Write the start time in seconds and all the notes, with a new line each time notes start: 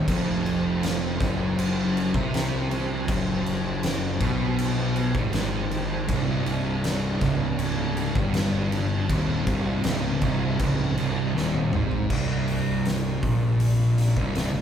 0.08 F1 F2 F3 G4 C5, kick, crash
0.46 crash
0.83 snare, crash
1.20 F#1 F#2, kick, snare, crash
1.59 crash
1.97 crash
2.14 C2 C3, kick
2.34 snare, crash
2.71 crash
3.08 F#1 F#2, kick, crash
3.46 crash
3.83 snare, crash
4.21 B1 B2, kick, crash
4.59 crash
4.96 crash
5.14 G#1 G#2, kick
5.33 snare, crash
5.71 crash
6.08 C1 C2 C3 G3 D4, kick, crash
6.46 crash
6.84 snare, crash
7.21 C#1 C#2, kick, snare, crash
7.59 crash
7.97 crash
8.15 G1 G2, kick
8.34 snare, crash
8.72 crash
9.09 D#1 D#2 C4, kick, crash
9.47 C1 C2, kick, crash
9.84 C#1 C#2, snare, crash
10.22 C1 C2, kick, crash
10.59 C#1 C#2, kick, crash
10.97 C1 C2, crash
11.35 D#1 D#2, snare
11.55 high tom
11.72 G#1 G#2, mid tom
11.91 floor tom
12.09 C1 C2 C3 G3 D4, kick, crash
12.48 open hi-hat
12.86 snare, open hi-hat
13.22 A#1 A#2, kick, open hi-hat
13.60 open hi-hat
13.98 snare, open hi-hat
14.16 C1 C2, kick
14.35 snare, open hi-hat
14.54 C1 C2